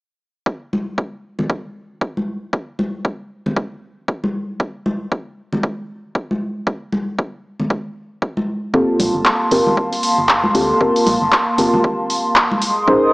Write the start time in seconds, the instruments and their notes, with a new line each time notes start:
0.46 kick
0.73 high conga
0.98 kick
1.39 high conga, low conga
1.50 kick
2.01 kick
2.17 high conga
2.53 kick
2.79 high conga
3.05 kick
3.46 high conga, low conga
3.57 kick
4.08 kick
4.24 high conga
4.60 kick
4.86 high conga
5.12 kick
5.53 high conga, low conga
5.63 kick
6.15 kick
6.31 high conga
6.67 kick
6.92 high conga
7.19 kick
7.60 high conga, low conga
7.70 kick
8.22 kick
8.37 high conga
8.73 fm bass G1, synth stab A#3 C4 F4 G4 A4, analog synth pad A#3 F5 A5 C6, kick
9.00 fm bass A#1, open hi-hat, high conga
9.15 fm bass G1
9.25 kick, clap
9.51 fm bass G1, synth stab A#3 C4 F4 G4 A#4, open hi-hat
9.66 high conga, low conga
9.77 kick
9.93 open hi-hat
10.03 open hi-hat
10.18 fm bass G1
10.29 kick, clap
10.44 high conga
10.55 fm bass D2, synth stab A#3 C4 F4 G4 A4, open hi-hat
10.81 fm bass G1, synth stab A#3 C4 F4 G4 A#4, kick
10.96 open hi-hat
11.06 fm bass A#1, open hi-hat, high conga
11.22 fm bass G1
11.32 kick, clap
11.58 fm bass G1, synth stab A#3 C4 F4 G4 A#4, open hi-hat
11.73 high conga, low conga
11.84 kick
12.10 open hi-hat
12.36 kick, clap
12.52 high conga
12.62 analog synth pad G#4 D#5 C6 D#6, open hi-hat
12.87 fm bass A#1, synth stab C#4 D#4 G#4 A#4 C5, kick